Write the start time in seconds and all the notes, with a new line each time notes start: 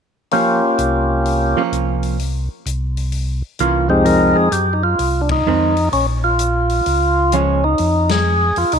0.31 F3 A#3 C#4 F4 G4, open hi-hat
0.78 C2, closed hi-hat
1.25 open hi-hat
1.57 F3 A#3 C#4
1.72 C2, closed hi-hat
2.03 open hi-hat
2.19 open hi-hat
2.66 C2, closed hi-hat
2.97 open hi-hat
3.12 open hi-hat
3.59 C2 E3 A#3 C#4 F4, closed hi-hat
3.89 F2 G#3 C4 D#4 G4
4.05 F2 A#4, open hi-hat
4.36 G#4
4.52 F#2 G4, closed hi-hat
4.73 D#4
4.83 F4
4.99 C2, open hi-hat
5.21 D4
5.29 D#4, kick, ride
5.46 F2 D#3 G#3 C4
5.77 open hi-hat
5.92 A#1 C#4, open hi-hat
6.24 F4
6.39 closed hi-hat
6.69 open hi-hat
6.86 C#2, open hi-hat
7.32 F3 G#3 C#4, closed hi-hat
7.64 D#4
7.78 F2, open hi-hat
8.09 G#4, snare, ride
8.56 F2 F4, open hi-hat
8.72 C2 D#4, open hi-hat